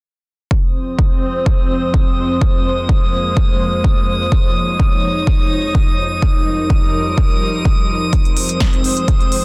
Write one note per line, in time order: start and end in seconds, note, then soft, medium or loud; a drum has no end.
0.51 9.45 F2 medium
0.51 6.18 F3 medium
0.51 6.18 G#3 medium
0.51 2.39 C4 medium
0.51 4.28 C5 medium
0.51 9.45 D#6 medium
0.51 kick loud
0.99 kick medium
1.46 kick loud
1.94 kick medium
2.41 4.30 A#3 medium
2.41 kick loud
2.89 kick loud
3.37 kick loud
3.84 kick loud
4.32 8.09 D#4 medium
4.32 6.20 C#5 medium
4.32 kick loud
4.80 kick loud
5.27 kick loud
5.75 kick loud
6.22 9.45 F3 medium
6.22 8.11 G3 medium
6.22 8.11 A#4 medium
6.22 kick loud
6.70 kick loud
7.18 kick loud
7.65 kick loud
8.13 9.45 G#3 medium
8.13 9.45 C4 medium
8.13 9.45 C5 medium
8.13 kick loud
8.13 closed hi-hat soft
8.25 closed hi-hat soft
8.37 open hi-hat loud
8.49 closed hi-hat soft
8.60 kick medium
8.60 snare loud
8.60 closed hi-hat soft
8.73 closed hi-hat soft
8.84 open hi-hat medium
8.97 closed hi-hat soft
9.08 kick loud
9.08 closed hi-hat soft
9.21 closed hi-hat soft
9.32 open hi-hat medium